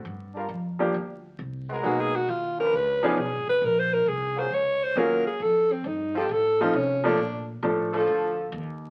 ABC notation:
X:1
M:4/4
L:1/8
Q:"Swing" 1/4=135
K:Gm
V:1 name="Alto saxophone"
z8 | (3_G _A G F B _c E A c | (3B c B _A c _d c B A | A C E G A F _D =D- |
D z6 z |]
V:2 name="Trombone section"
z [G,DFB] z4 z [_A,_C_GB]- | [_A,_C_GB]2 z [F,_D=D_c]3 z2 | z3 [_G,B,F_A] z4 | z3 [F,CEA] z4 |
z3 [F,DA]3 z2 |]
V:3 name="Grand piano"
z3 [F,G,B,DG] z4 | [_G,B,_CE_A] z4 [F,C_D=DA] z2 | z6 [_G,B,_DF_A] z | z4 z [F,A,CEA] z [F,A,B,DA] |
z2 [F,A,DA]3 z3 |]
V:4 name="Upright bass" clef=bass
G,,2 F,,2 D,,2 C,,2 | _C,,2 E,,2 _D,,2 (3C,, _A,,, F,,, | B,,,2 C,,2 _D,,2 E,, z | F,,2 G,,2 A,,2 C,2 |
B,,2 A,,2 D,,2 E,,2 |]